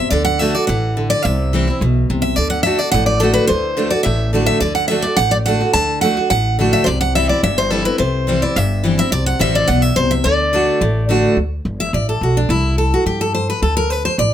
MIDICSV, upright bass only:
0, 0, Header, 1, 2, 480
1, 0, Start_track
1, 0, Tempo, 281426
1, 200, Time_signature, 4, 2, 24, 8
1, 24453, End_track
2, 0, Start_track
2, 0, Title_t, "Upright bass"
2, 0, Program_c, 0, 32
2, 196, Note_on_c, 0, 38, 92
2, 948, Note_off_c, 0, 38, 0
2, 1170, Note_on_c, 0, 33, 95
2, 1917, Note_off_c, 0, 33, 0
2, 2130, Note_on_c, 0, 36, 94
2, 2877, Note_off_c, 0, 36, 0
2, 3089, Note_on_c, 0, 35, 96
2, 3493, Note_off_c, 0, 35, 0
2, 3575, Note_on_c, 0, 36, 84
2, 3977, Note_off_c, 0, 36, 0
2, 4049, Note_on_c, 0, 38, 82
2, 4796, Note_off_c, 0, 38, 0
2, 5007, Note_on_c, 0, 33, 92
2, 5755, Note_off_c, 0, 33, 0
2, 5966, Note_on_c, 0, 38, 83
2, 6714, Note_off_c, 0, 38, 0
2, 6921, Note_on_c, 0, 33, 91
2, 7671, Note_off_c, 0, 33, 0
2, 7859, Note_on_c, 0, 38, 79
2, 8618, Note_off_c, 0, 38, 0
2, 8828, Note_on_c, 0, 33, 93
2, 9583, Note_off_c, 0, 33, 0
2, 9786, Note_on_c, 0, 38, 80
2, 10541, Note_off_c, 0, 38, 0
2, 10753, Note_on_c, 0, 33, 94
2, 11505, Note_off_c, 0, 33, 0
2, 11710, Note_on_c, 0, 36, 84
2, 12464, Note_off_c, 0, 36, 0
2, 12676, Note_on_c, 0, 31, 92
2, 13427, Note_off_c, 0, 31, 0
2, 13633, Note_on_c, 0, 36, 80
2, 14386, Note_off_c, 0, 36, 0
2, 14604, Note_on_c, 0, 31, 92
2, 15352, Note_off_c, 0, 31, 0
2, 15550, Note_on_c, 0, 36, 85
2, 15929, Note_off_c, 0, 36, 0
2, 16037, Note_on_c, 0, 33, 90
2, 16445, Note_off_c, 0, 33, 0
2, 16526, Note_on_c, 0, 35, 89
2, 16931, Note_off_c, 0, 35, 0
2, 16991, Note_on_c, 0, 36, 79
2, 17402, Note_off_c, 0, 36, 0
2, 17479, Note_on_c, 0, 38, 79
2, 18229, Note_off_c, 0, 38, 0
2, 18438, Note_on_c, 0, 33, 93
2, 19188, Note_off_c, 0, 33, 0
2, 19385, Note_on_c, 0, 38, 77
2, 19765, Note_off_c, 0, 38, 0
2, 19871, Note_on_c, 0, 31, 83
2, 20281, Note_off_c, 0, 31, 0
2, 20349, Note_on_c, 0, 33, 86
2, 20760, Note_off_c, 0, 33, 0
2, 20828, Note_on_c, 0, 35, 80
2, 21240, Note_off_c, 0, 35, 0
2, 21301, Note_on_c, 0, 36, 91
2, 22057, Note_off_c, 0, 36, 0
2, 22274, Note_on_c, 0, 43, 85
2, 23025, Note_off_c, 0, 43, 0
2, 23235, Note_on_c, 0, 38, 89
2, 23986, Note_off_c, 0, 38, 0
2, 24190, Note_on_c, 0, 33, 97
2, 24453, Note_off_c, 0, 33, 0
2, 24453, End_track
0, 0, End_of_file